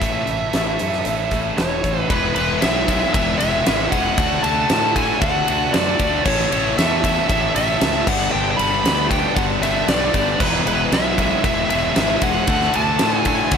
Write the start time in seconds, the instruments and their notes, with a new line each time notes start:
Already playing: lead electric guitar E5
0.00 fingered electric bass A1, overdriven electric guitar A2 E3 A3 C#4 E4, kick, closed hi-hat
0.27 fingered electric bass A1, overdriven electric guitar A2 E3, closed hi-hat
0.53 fingered electric bass A1, overdriven electric guitar A2 E3 A3, snare, closed hi-hat
0.79 fingered electric bass F#2, overdriven electric guitar A2 E3 A3 C#4 E4, closed hi-hat
0.93 snare
1.05 fingered electric bass A1, overdriven electric guitar A2 E3, closed hi-hat
1.31 overdriven electric guitar A2 E3 A3, kick, closed hi-hat
1.58 fingered electric bass E1, overdriven electric guitar A2 E3, lead electric guitar C#5, snare, closed hi-hat
1.84 fingered electric bass A1, overdriven electric guitar A2 E3, kick, closed hi-hat
2.00 lead electric guitar B4
2.09 fingered electric bass E1, overdriven electric guitar E2 B2 E3 G#3 B3 E4 G#4, lead electric guitar B4, kick, ride
2.35 fingered electric bass E1, overdriven electric guitar E2 B2 E3 G#3 B3 E4 G#4, lead electric guitar B4, ride
2.61 fingered electric bass B1, overdriven electric guitar E2 B2 E3 G#3 B3 E4 G#4, lead electric guitar E5, snare, ride
2.87 overdriven electric guitar E2 B2 E3 G#3 B3 E4 G#4, kick, ride
3.13 fingered electric bass E1, overdriven electric guitar E2 B2 E3 G#3 B3 E4 G#4, lead electric guitar E5, kick, ride
3.39 fingered electric bass E1, overdriven electric guitar E2 B2 E3 G#3 B3 E4 G#4, lead electric guitar E5, snare, ride
3.65 fingered electric bass G#1, overdriven electric guitar E2 B2 E3 G#3 B3 E4 G#4, snare, ride
3.91 fingered electric bass E1, overdriven electric guitar E2 B2 E3 G#3 B3 E4 G#4, lead electric guitar F#5, kick, ride
4.18 fingered electric bass D2, overdriven electric guitar D3 A3 D4 F#4, kick, ride
4.43 fingered electric bass D2, overdriven electric guitar D3 A3 D4 F#4, lead electric guitar A5, ride
4.70 fingered electric bass A2, overdriven electric guitar D3 A3 D4 F#4, snare, ride
4.96 overdriven electric guitar D3 A3 D4 F#4, lead electric guitar G#5, kick, ride
5.21 fingered electric bass D2, overdriven electric guitar D3 A3 D4 F#4, lead electric guitar F#5, kick, ride
5.48 fingered electric bass D2, overdriven electric guitar D3 A3 D4 F#4, ride
5.73 fingered electric bass F#2, overdriven electric guitar D3 A3 D4 F#4, lead electric guitar D5, snare, ride
5.99 fingered electric bass D2, overdriven electric guitar D3 A3 D4 F#4, kick, ride
6.25 fingered electric bass A1, overdriven electric guitar A2 E3 A3 C#4 E4 A4, lead electric guitar C#5, kick, crash
6.39 snare
6.51 fingered electric bass A1, overdriven electric guitar A2 E3 A3 C#4 E4 A4, lead electric guitar C#5, ride
6.78 fingered electric bass E2, overdriven electric guitar A2 E3 A3 C#4 E4 A4, lead electric guitar E5, snare, ride
7.04 overdriven electric guitar A2 E3 A3 C#4 E4 A4, kick, ride
7.29 fingered electric bass A1, overdriven electric guitar A2 E3 A3 C#4 E4 A4, lead electric guitar E5, kick, ride
7.55 fingered electric bass A1, overdriven electric guitar A2 E3 A3 C#4 E4 A4, lead electric guitar E5, snare, ride
7.81 fingered electric bass C#2, overdriven electric guitar A2 E3 A3 C#4 E4 A4, snare, ride
8.07 fingered electric bass G1, overdriven electric guitar G2 D3 G3 B3 D4 G4, lead electric guitar F#5, kick, crash
8.31 fingered electric bass G1, overdriven electric guitar G2 D3 G3 B3 D4 G4, lead electric guitar G5
8.51 lead electric guitar G5
8.57 fingered electric bass G1, overdriven electric guitar G2 D3 G3 B3 D4, lead electric guitar B5, ride
8.61 overdriven electric guitar G4
8.84 fingered electric bass D2, overdriven electric guitar G2 D3 G3 B3 D4 G4, snare, ride
9.09 overdriven electric guitar G2 D3 G3 B3 D4 G4, lead electric guitar G5, kick, ride
9.35 fingered electric bass G1, overdriven electric guitar G2 D3 G3 B3 D4 G4, lead electric guitar F#5, kick, ride
9.61 fingered electric bass G1, overdriven electric guitar G2 D3 G3 B3 D4 G4, lead electric guitar E5, snare, ride
9.87 fingered electric bass B1, overdriven electric guitar G2 D3 G3 B3 D4 G4, lead electric guitar D5, snare, ride
10.12 fingered electric bass G1, overdriven electric guitar G2 D3 G3 B3 D4 G4, kick, ride
10.38 fingered electric bass E1, overdriven electric guitar E2 B2 E3 G#3 B3 G#4, lead electric guitar B4, kick, crash
10.42 overdriven electric guitar E3 E4
10.64 fingered electric bass E1, overdriven electric guitar E2 B2 E3 G#3 B3 E4 G#4, lead electric guitar B4, ride
10.91 fingered electric bass B1, overdriven electric guitar E2 B2 E3 G#3 B3 E4 G#4, lead electric guitar E5, snare, ride
11.16 overdriven electric guitar E2 B2 E3 G#3 B3 E4 G#4, kick, ride
11.43 fingered electric bass E1, overdriven electric guitar E2 B2 E3 G#3 B3 E4 G#4, lead electric guitar E5, kick, ride
11.69 fingered electric bass E1, overdriven electric guitar E2 B2 E3 G#3 B3 E4 G#4, lead electric guitar E5, ride
11.95 fingered electric bass G#1, overdriven electric guitar E2 B2 E3 G#3 B3 E4 G#4, snare, ride
12.21 fingered electric bass E1, overdriven electric guitar E2 B2 E3 G#3 B3 E4 G#4, lead electric guitar F#5, kick, ride
12.47 fingered electric bass D2, overdriven electric guitar D3 A3 D4 F#4, kick, ride
12.61 snare
12.73 fingered electric bass D2, overdriven electric guitar D3 A3 D4 F#4, lead electric guitar A5, ride
12.99 fingered electric bass A2, overdriven electric guitar D3 A3 D4 F#4, snare, ride
13.14 lead electric guitar G#5
13.25 overdriven electric guitar D3 A3 D4 F#4, lead electric guitar G#5, kick, ride
13.51 fingered electric bass D2, overdriven electric guitar D3 A3 D4 F#4, kick, ride